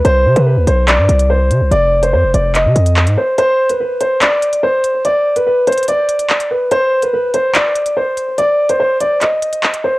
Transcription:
<<
  \new Staff \with { instrumentName = "Grand piano" } { \time 4/4 \key f \dorian \tempo 4 = 144 c''8. b'16 b'8 c''8 d''4 c''4 | d''8. c''16 c''8 d''8 ees''4. c''8 | c''8. b'16 b'8 c''8 d''4 c''4 | d''8. b'16 b'8 c''8 d''4. b'8 |
c''8. b'16 b'8 c''8 d''4 c''4 | d''8. c''16 c''8 d''8 ees''4. c''8 | }
  \new Staff \with { instrumentName = "808-style bass" } { \clef bass \time 4/4 \key f \dorian c,8 c16 c8 ees,16 b,,8. g,16 c,4 c16 c,16 | f,,4 f,16 f,,16 f,,8. c16 f,8. aes,16 r8 | r1 | r1 |
r1 | r1 | }
  \new DrumStaff \with { instrumentName = "Drums" } \drummode { \time 4/4 hh8. hh16 r8 hh8 <hc hh>8 hh16 hh16 r8 hh8 | hh8. hh16 r8 hh8 <hc hh>8 hh16 hh16 hc16 hh8. | hh8. hh16 r8 hh8 <hc hh>8 hh16 hh16 r8 hh8 | hh8. hh16 r8 hh32 hh32 hh32 hh32 hh8 hh16 hh16 hc16 hh8. |
hh8. hh16 r8 hh8 <hc hh>8 hh16 hh16 r8 hh8 | hh8. hh16 r8 hh8 <hc hh>8 hh16 hh16 hc16 hh8. | }
>>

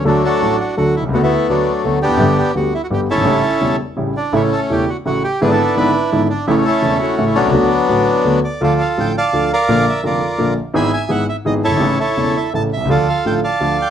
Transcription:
<<
  \new Staff \with { instrumentName = "Bandoneon" } { \time 3/4 \key d \major \tempo 4 = 168 << { d'8 a'4 fis'8 fis'8 e'8 | fis'16 e'8. d'4 r8 g'8~ | g'8 g'8 fis'8 e'16 fis'16 g'8 a'8~ | a'4. r4 d'8 |
e'8 a'8 g'8 fis'8 fis'8 g'8 | gis'16 a'8. b'4 r8 d'8 | e'8 a'4 fis'8. e'16 d'8~ | d'2~ d'8 d''8 |
\key d \minor d''8 f''8 g''8 a''4 f''8~ | f''8 e''8 d''4. r8 | b''8 gis''8 fis''8 e''8 ees''8 cis''8~ | cis''8 cis''4 e''8 a''8 e''8 |
d''8 f''8 g''8 a''4 g''8 | } \\ { <fis a>8 <d' fis'>4. r4 | <a b>16 <a b>8. <fis a>4. <b d'>8~ | <b d'>4 r4. <cis' e'>8~ | <cis' e'>4. r4. |
<a cis'>4. r4. | <b d'>16 <d' e'>8. <d' e'>4. r8 | <a cis'>8 <cis' e'>4 <a cis'>4 <fis b>8~ | <fis b>2~ <fis b>8 r8 |
<f' a'>4. <d'' f''>4 <bes' d''>8~ | <bes' d''>4 <f' bes'>4. r8 | <e'' gis''>4. r4 <e' a'>8~ | <e' a'>8 <e' a'>4. r4 |
<f' a'>4. <d'' f''>4. | } >> }
  \new Staff \with { instrumentName = "Grand piano" } { \clef bass \time 3/4 \key d \major <d, d fis a d' a'>8 r8 <a,, a, fis a d' a'>8 r8 <d, d fis a d' a'>8 r32 b,,32 c,32 cis,32 | <d, d a b fis'>8 r8 <d, d a b fis'>8 r8 <d, d a b fis'>8 r32 e,32 f,32 fis,32 | <g,, g, d g b g'>8 r8 <d, d g b g'>8 r8 <g,, g, d g b g'>8 r32 fis,,32 g,,32 gis,,32 | <a,, a, cis g a e'>8 r8 <e,, e, cis g a e'>8 r8 <a,, a, cis g a e'>8 r8 |
<a,, a, cis e a e'>8 r8 <e,, e, cis e a e'>8 r8 <a,, a, cis e a e'>8 r8 | <gis,, gis, d gis b e'>8 r8 <gis,, gis, d gis b e'>8 r8 <gis,, gis, d gis b e'>8 r8 | <a,, a, cis e a e'>8 r8 <e,, e, cis e a e'>8 r8 <a,, a, cis e a e'>8 r32 b,,32 c,32 cis,32 | <d, d a b fis'>8 r8 <a,, a, d a b fis'>8 r8 <d, d a b fis'>8 r8 |
\key d \minor <d, d f a f'>8 r8 <a,, a, d f a f'>8 r8 <d, d f a f'>8 r8 | <bes,, bes, d f bes f'>8 r8 <f,, f, d f bes f'>8 r8 <bes,, bes, d f bes f'>8 r8 | <gis,, gis, e gis b gis'>8 r8 <gis,, gis, e gis b gis'>8 r8 <gis,, gis, e gis b gis'>8 r32 fis,,32 g,,32 gis,,32 | <a,, a, cis e a e'>8 r8 <e,, e, cis e a e'>8 r8 <a,, a, cis e a e'>8 r32 b,,32 c,32 cis,32 |
<d, d f a f'>8 r8 <a,, a, d f a f'>8 r8 <d, d f a f'>8 r8 | }
>>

